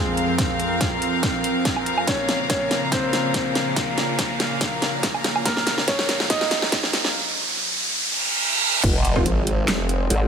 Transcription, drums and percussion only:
0.17 closed hi-hat
0.38 kick, snare, closed hi-hat
0.60 closed hi-hat
0.81 kick, snare, closed hi-hat
1.02 closed hi-hat
1.23 kick, snare, closed hi-hat
1.44 closed hi-hat
1.65 kick, snare, closed hi-hat
1.76 low woodblock
1.86 closed hi-hat
1.98 low woodblock
2.07 kick, snare, closed hi-hat
2.29 snare, closed hi-hat
2.50 kick, snare, closed hi-hat
2.71 snare, closed hi-hat
2.92 kick, snare, closed hi-hat
3.13 snare, closed hi-hat
3.34 kick, snare, closed hi-hat
3.55 snare, closed hi-hat
3.76 kick, snare, closed hi-hat
3.98 snare, closed hi-hat
4.19 kick, snare, closed hi-hat
4.40 snare, closed hi-hat
4.61 kick, snare, closed hi-hat
4.82 snare, closed hi-hat
5.03 kick, snare, closed hi-hat
5.14 low woodblock
5.24 snare, closed hi-hat
5.36 low woodblock
5.45 kick, snare, closed hi-hat
5.57 snare
5.67 snare, closed hi-hat
5.78 snare
5.88 kick, snare, closed hi-hat
5.99 snare
6.09 snare, closed hi-hat
6.20 snare
6.30 kick, snare, closed hi-hat
6.41 snare
6.51 snare, closed hi-hat
6.62 snare
6.72 kick, snare, closed hi-hat
6.83 snare
6.93 snare, closed hi-hat
7.05 snare
8.83 kick, closed hi-hat, crash
9.05 closed hi-hat
9.16 kick
9.26 closed hi-hat
9.47 closed hi-hat
9.68 snare, clap, closed hi-hat
9.89 closed hi-hat
10.10 closed hi-hat

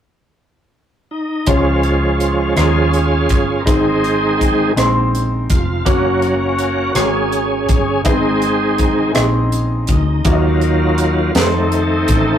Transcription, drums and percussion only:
1.46 kick, closed hi-hat
1.83 closed hi-hat
2.20 closed hi-hat
2.57 cross-stick, closed hi-hat
2.94 closed hi-hat
3.29 kick, closed hi-hat
3.67 kick, closed hi-hat
4.04 closed hi-hat
4.41 kick, closed hi-hat
4.77 cross-stick, closed hi-hat
5.15 closed hi-hat
5.50 kick, closed hi-hat
5.86 kick, closed hi-hat
6.22 closed hi-hat
6.59 closed hi-hat
6.95 cross-stick, closed hi-hat
7.32 closed hi-hat
7.69 kick, closed hi-hat
8.05 kick, closed hi-hat
8.42 closed hi-hat
8.78 kick, closed hi-hat
9.15 cross-stick, closed hi-hat
9.52 closed hi-hat
9.87 kick, closed hi-hat
10.25 kick, closed hi-hat
10.61 closed hi-hat
10.98 closed hi-hat
11.35 snare, closed hi-hat
11.72 closed hi-hat
12.08 kick, closed hi-hat

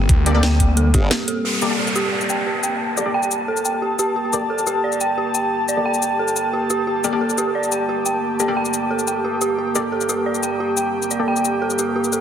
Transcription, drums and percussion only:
0.09 kick, closed hi-hat
0.26 closed hi-hat
0.43 snare, closed hi-hat
0.60 kick, closed hi-hat
0.77 closed hi-hat
0.94 kick, closed hi-hat
1.11 snare, closed hi-hat
1.28 closed hi-hat
1.62 shaker
1.87 shaker
1.96 shaker
2.21 shaker
2.30 shaker
2.63 shaker
2.97 shaker
3.23 shaker
3.31 shaker
3.57 shaker
3.65 shaker
3.99 shaker
4.33 shaker
4.58 shaker
4.67 shaker
4.92 shaker
5.01 shaker
5.35 shaker
5.69 shaker
5.94 shaker
6.02 shaker
6.28 shaker
6.36 shaker
6.70 shaker
7.04 shaker
7.30 shaker
7.38 shaker
7.63 shaker
7.72 shaker
8.06 shaker
8.40 shaker
8.65 shaker
8.74 shaker
8.99 shaker
9.08 shaker
9.41 shaker
9.75 shaker
10.01 shaker
10.09 shaker
10.35 shaker
10.43 shaker
10.77 shaker
11.02 shaker
11.11 shaker
11.36 shaker
11.45 shaker
11.70 shaker
11.79 shaker
12.04 shaker
12.13 shaker

